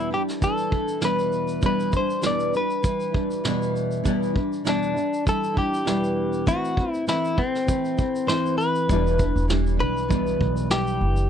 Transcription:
Already playing: nylon-string guitar E2 B2 E3 G3
0.10 nylon-string guitar E3 G3 D4 E4, clean electric guitar G4
0.28 snare, shaker
0.40 nylon-string guitar E3 G3 D4 E4, clean electric guitar A4, kick, shaker
0.58 shaker
0.70 nylon-string guitar E3 G3 D4 E4, kick
0.88 shaker
1.00 nylon-string guitar E2 B2 E3 G3 D4 E4, snare, shaker
1.05 clean electric guitar B4
1.19 shaker
1.32 shaker
1.48 shaker
1.61 nylon-string guitar E2 B2 E3 G3 D4 E4, kick, shaker
1.66 clean electric guitar B4
1.80 shaker
1.92 nylon-string guitar E3 G3 D4 E4, kick, shaker
1.97 clean electric guitar C5
2.10 shaker
2.21 nylon-string guitar E2 B2 E3 G3 D4 E4, snare, shaker
2.26 clean electric guitar D5
2.40 shaker
2.52 nylon-string guitar E3 G3 D4 E4, shaker
2.57 clean electric guitar B4
2.70 shaker
2.82 nylon-string guitar E3 G3 D4 E4, kick, shaker
3.00 shaker
3.12 nylon-string guitar E3 G3 D4 E4, kick
3.31 shaker
3.44 nylon-string guitar E2 B2 E3 G3 D4 E4, snare, shaker
3.62 shaker
3.76 shaker
3.91 shaker
4.04 nylon-string guitar E2 B2 E3 G3 D4 E4, kick, shaker
4.23 shaker
4.34 nylon-string guitar E3 G3 D4 E4, kick
4.53 shaker
4.64 nylon-string guitar E2 B2 E3 G3 D4 E4, snare, shaker
4.69 clean electric guitar D4
4.83 shaker
4.94 nylon-string guitar E3 G3 D4 E4, shaker
5.14 shaker
5.25 nylon-string guitar E3 G3 D4 E4, kick, shaker
5.29 clean electric guitar A4
5.44 shaker
5.54 nylon-string guitar E3 G3 D4 E4, kick
5.58 clean electric guitar G4
5.74 shaker
5.85 nylon-string guitar E2 B2 E3 G3 D4 E4, snare, shaker
6.04 shaker
6.33 shaker
6.46 nylon-string guitar E3 A3 C4 E4, clean electric guitar F#4, kick, shaker
6.65 shaker
6.77 nylon-string guitar A3 C4 E4, kick
6.91 clean electric guitar E4, shaker
7.07 nylon-string guitar E3 A3 C4 E4, clean electric guitar E4, snare, shaker
7.25 shaker
7.35 nylon-string guitar A3 C4 E4, clean electric guitar C4, kick
7.55 snare, shaker
7.66 nylon-string guitar E3 A3 C4 E4, kick, shaker
7.85 shaker
7.98 nylon-string guitar A3 C4 E4, kick, shaker
8.16 shaker
8.27 nylon-string guitar E3 A3 C4 E4, clean electric guitar C5, snare, shaker
8.46 shaker
8.58 clean electric guitar B4, shaker
8.75 shaker
8.89 upright bass E1, nylon-string guitar E2 B2 E3 G3 D4 E4, upright piano G3 E4, kick, shaker
8.93 upright piano D5
9.07 shaker
9.18 nylon-string guitar E3 G3 D4 E4, kick, shaker
9.36 upright bass E1, shaker
9.48 nylon-string guitar E3 G3 D4 E4, snare, shaker
9.67 shaker
9.77 upright bass B1, nylon-string guitar E3 G3 D4 E4, clean electric guitar B4
9.97 shaker
10.08 nylon-string guitar E2 B2 E3 G3 D4 E4, kick, shaker
10.27 shaker
10.41 upright bass B1, kick
10.57 shaker
10.70 nylon-string guitar E3 G3 D4 E4, clean electric guitar G4, snare, shaker
10.87 shaker
11.01 upright bass F#1
11.16 shaker

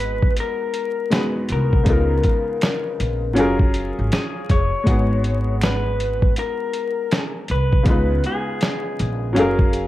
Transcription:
Already playing: upright bass G#1, upright piano G#3 B3 D#4 F#4 G#4, clean electric guitar B4
0.00 closed hi-hat
0.23 kick
0.37 clean electric guitar A#4, closed hi-hat
0.74 closed hi-hat
1.10 upright piano G#3 B3 D#4 F#4 G#4, finger snap, snare, closed hi-hat
1.15 clean electric guitar B4
1.49 upright bass C2, clean electric guitar A#4, closed hi-hat
1.73 kick
1.84 upright bass C#2, upright piano C#3 G#3 B3 D#4, kick, closed hi-hat
1.89 upright piano F4 A#4
2.23 kick, closed hi-hat
2.61 finger snap, snare, closed hi-hat
3.00 upright bass A#1, closed hi-hat
3.33 upright piano F#3 C#4 F4, closed hi-hat
3.38 upright bass F#1, upright piano G#4 A#4
3.59 kick
3.74 closed hi-hat
3.99 upright bass G#1
4.12 clean electric guitar G#4, finger snap, snare, closed hi-hat
4.49 upright bass F1, clean electric guitar C#5, kick, closed hi-hat
4.83 upright bass G#1, upright piano G#3 D#4 F#4, kick, closed hi-hat
4.88 upright piano B3 G#4
5.24 closed hi-hat
5.61 clean electric guitar B4, finger snap, snare, closed hi-hat
6.00 closed hi-hat
6.22 kick
6.36 clean electric guitar A#4, closed hi-hat
6.73 closed hi-hat
7.11 clean electric guitar G#4, finger snap, snare, closed hi-hat
7.48 upright bass C2, clean electric guitar B4, closed hi-hat
7.72 kick
7.83 upright bass C#2, upright piano C#3 G#3 B3 D#4, kick, closed hi-hat
7.89 upright piano F4 B4
8.24 clean electric guitar G#4, closed hi-hat
8.61 snare, closed hi-hat
8.99 upright bass A#1, closed hi-hat
9.33 upright piano F#3 C#4 F5, closed hi-hat
9.37 upright bass F#1, upright piano G#4 A#4
9.59 kick
9.73 closed hi-hat

